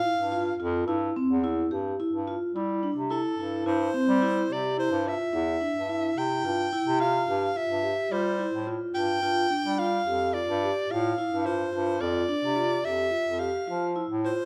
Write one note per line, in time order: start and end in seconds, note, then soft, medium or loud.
0.00 0.26 E4 medium
0.00 0.55 F5 loud
0.17 0.54 G2 medium
0.32 0.54 F4 medium
0.59 0.83 F2 loud
0.59 0.82 F4 medium
0.86 1.11 G2 medium
0.86 1.10 E4 medium
1.16 1.38 C4 medium
1.29 1.65 E2 medium
1.44 1.66 E4 medium
1.70 1.95 G2 medium
1.70 1.94 G4 medium
2.00 2.22 E4 medium
2.12 2.37 G2 medium
2.27 2.50 F4 medium
2.54 2.91 G3 medium
2.54 2.78 E4 medium
2.83 3.05 D4 medium
2.96 3.20 C3 medium
3.10 3.33 E4 medium
3.10 3.68 A4 medium
3.38 3.62 G2 medium
3.38 3.61 E4 medium
3.66 3.90 G2 medium
3.66 3.89 E4 medium
3.66 4.54 C5 medium
3.94 4.16 C4 medium
4.08 4.44 G3 medium
4.22 4.44 E4 medium
4.50 4.86 C3 medium
4.50 4.73 G4 medium
4.50 4.79 D5 medium
4.78 5.00 E4 medium
4.78 5.09 C5 medium
4.91 5.15 G2 medium
5.06 5.28 F4 medium
5.06 6.20 E5 medium
5.33 5.57 E2 medium
5.33 5.56 E4 medium
5.61 5.83 D4 medium
5.75 6.11 G2 medium
5.89 6.12 E4 medium
6.17 6.41 C3 medium
6.17 6.40 E4 medium
6.17 7.00 G5 medium
6.45 6.69 G2 medium
6.45 6.67 F4 medium
6.73 6.95 E4 medium
6.86 7.22 C3 medium
7.00 7.23 F4 medium
7.00 7.59 F5 loud
7.28 7.52 G2 medium
7.28 7.50 G4 medium
7.56 7.78 F4 medium
7.56 8.14 E5 loud
7.69 7.94 G2 medium
7.83 8.06 G4 medium
8.11 8.48 G3 medium
8.11 8.34 F4 medium
8.11 8.68 C5 medium
8.39 8.61 E4 medium
8.53 8.77 A2 medium
8.67 8.89 F4 medium
8.95 9.19 G2 medium
8.95 9.17 F4 medium
8.95 9.80 G5 loud
9.22 9.47 G2 medium
9.22 9.45 F4 medium
9.50 9.73 D4 medium
9.64 10.01 G3 medium
9.79 10.01 F4 medium
9.79 10.35 F5 loud
10.06 10.42 F2 medium
10.06 10.29 G4 medium
10.34 10.57 F4 medium
10.34 10.92 D5 medium
10.48 10.72 G2 loud
10.63 10.85 G4 medium
10.90 11.14 A2 medium
10.90 11.13 F4 medium
10.90 11.47 F5 medium
11.18 11.40 E4 medium
11.31 11.68 G2 medium
11.46 11.68 F4 medium
11.46 12.02 C5 medium
11.73 11.97 G2 loud
11.73 11.96 F4 medium
12.00 12.25 F2 loud
12.00 12.23 F4 medium
12.00 12.86 D5 loud
12.29 12.51 D4 medium
12.43 12.79 C3 medium
12.56 12.79 F4 medium
12.84 13.09 F2 medium
12.84 13.06 G4 medium
12.84 13.41 E5 medium
13.11 13.34 F4 medium
13.27 13.51 F2 medium
13.39 13.62 G4 medium
13.39 13.96 F5 medium
13.67 14.04 F3 medium
13.67 13.90 F4 medium
13.96 14.18 E4 medium
14.10 14.34 A2 medium
14.25 14.45 F4 medium
14.25 14.45 C5 medium